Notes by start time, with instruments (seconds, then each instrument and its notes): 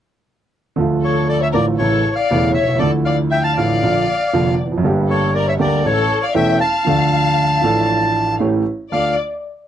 0.76 grand piano D2 D3 F3 A3
0.80 grand piano F4
1.03 violin section A4, bandoneon C#5
1.28 violin section A4, bandoneon D5
1.41 violin section C#5, bandoneon E5
1.52 grand piano A1 A2 D3 F3 A3 F4, violin section A#4, bandoneon D5
1.77 grand piano A1 A2 C#3 E3 A3, violin section A4, bandoneon C#5
1.81 grand piano E4
2.16 violin section D5, bandoneon F5
2.31 grand piano E1 E2 C#3 E3 A3 E4
2.53 violin section C#5, bandoneon E5
2.63 grand piano B1
2.69 grand piano C2
2.75 grand piano C#2 D3, violin section A4
2.79 grand piano D2 D3 F3 A3 E4, bandoneon D5
3.05 violin section D5, bandoneon F5
3.30 violin section E5, bandoneon G5
3.44 violin section F5, bandoneon A5
3.57 grand piano A1 A2 D3 F3 A3 E4, violin section D5, bandoneon F5
3.83 grand piano A#1 A#2 D3 F3 A#3 F4
4.33 grand piano F1 F2 D3 F3 A#3 F4
4.66 grand piano E2
4.72 grand piano F2
4.78 grand piano F#2
4.82 grand piano G1 G2 D3 G3 A#3
4.87 grand piano G4
5.09 violin section A4, bandoneon C#5
5.34 violin section A#4, bandoneon D5
5.48 violin section C#5, bandoneon E5
5.59 grand piano D2 D3 G3 A#3 G4, violin section A#4, bandoneon D5
5.85 grand piano A1 A2 E3 A3 C#4 A4, violin section A4, bandoneon C#5
6.23 violin section D5, bandoneon F5
6.35 grand piano E1 E2 E3 A3 C#4 A4, violin section E5, bandoneon G5
6.60 violin section F5, bandoneon A5
6.85 grand piano D2 D3 F3 A3 D4
6.89 grand piano A4
7.61 grand piano A1 A2 F3 A3 D4 A4
8.40 grand piano A1 A2 E3 A3 C#4 G4
8.91 grand piano D2 A3 D4 F4, violin section D5, bandoneon F5